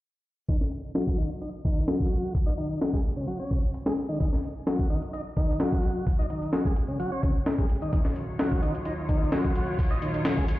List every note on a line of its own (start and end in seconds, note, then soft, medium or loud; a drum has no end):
0.48 0.56 D#3 medium
0.48 kick loud
0.48 closed hi-hat medium
0.61 snare soft
0.72 closed hi-hat medium
0.95 1.17 F#3 medium
0.95 snare loud
0.95 closed hi-hat medium
1.07 kick medium
1.18 1.30 D#3 medium
1.18 closed hi-hat medium
1.31 closed hi-hat soft
1.41 1.49 D#4 medium
1.41 closed hi-hat medium
1.65 1.87 D#3 medium
1.65 kick medium
1.65 closed hi-hat medium
1.88 2.33 F#3 medium
1.88 snare loud
1.88 closed hi-hat medium
2.00 kick medium
2.11 closed hi-hat medium
2.35 kick loud
2.35 open hi-hat medium
2.46 2.54 D#4 medium
2.57 2.80 D#3 medium
2.57 closed hi-hat medium
2.70 closed hi-hat soft
2.81 2.92 F#3 medium
2.81 snare loud
2.81 closed hi-hat medium
2.93 3.01 G#3 medium
2.93 kick medium
3.05 closed hi-hat medium
3.16 3.26 C#3 medium
3.27 3.38 F#3 loud
3.27 closed hi-hat medium
3.40 3.50 C#4 medium
3.50 3.59 C#3 loud
3.50 kick medium
3.50 closed hi-hat medium
3.74 closed hi-hat medium
3.86 3.93 G#3 medium
3.86 snare loud
3.97 closed hi-hat medium
4.09 4.19 D#3 loud
4.20 4.28 D#3 medium
4.20 kick loud
4.20 closed hi-hat medium
4.33 snare soft
4.44 closed hi-hat medium
4.67 4.89 F#3 medium
4.67 snare loud
4.67 closed hi-hat medium
4.79 kick medium
4.90 5.02 D#3 medium
4.90 closed hi-hat medium
5.02 closed hi-hat soft
5.13 5.21 D#4 medium
5.13 closed hi-hat medium
5.37 5.59 D#3 medium
5.37 kick medium
5.37 closed hi-hat medium
5.60 6.05 F#3 medium
5.60 snare loud
5.60 closed hi-hat medium
5.72 kick medium
5.83 closed hi-hat medium
6.07 kick loud
6.07 open hi-hat medium
6.19 6.26 D#4 medium
6.30 6.52 D#3 medium
6.30 closed hi-hat medium
6.42 closed hi-hat soft
6.53 6.64 F#3 medium
6.53 snare loud
6.53 closed hi-hat medium
6.65 6.73 G#3 medium
6.65 kick medium
6.76 closed hi-hat medium
6.88 6.98 C#3 medium
6.99 7.10 F#3 loud
6.99 closed hi-hat medium
7.12 7.22 C#4 medium
7.23 7.31 C#3 loud
7.23 kick medium
7.23 closed hi-hat medium
7.46 snare loud
7.46 closed hi-hat medium
7.58 7.66 G#3 medium
7.58 kick medium
7.69 closed hi-hat medium
7.82 7.91 D#3 loud
7.82 closed hi-hat soft
7.92 10.59 D#2 medium
7.92 10.59 A#2 medium
7.92 8.01 D#3 medium
7.92 10.59 F#3 medium
7.92 10.59 F4 medium
7.92 10.59 C#5 medium
7.92 kick loud
7.92 closed hi-hat medium
8.05 snare soft
8.16 closed hi-hat medium
8.39 8.61 F#3 medium
8.39 snare loud
8.39 closed hi-hat medium
8.52 kick medium
8.62 8.74 D#3 medium
8.62 closed hi-hat medium
8.75 closed hi-hat soft
8.85 8.94 D#4 medium
8.85 closed hi-hat medium
9.09 9.31 D#3 medium
9.09 kick medium
9.09 closed hi-hat medium
9.32 9.78 F#3 medium
9.32 snare loud
9.32 closed hi-hat medium
9.44 kick medium
9.55 closed hi-hat medium
9.79 kick loud
9.79 open hi-hat medium
9.91 9.98 D#4 medium
10.02 10.24 D#3 medium
10.02 closed hi-hat medium
10.14 closed hi-hat soft
10.25 10.36 F#3 medium
10.25 snare loud
10.25 closed hi-hat medium
10.37 10.45 G#3 medium
10.37 kick medium
10.48 closed hi-hat medium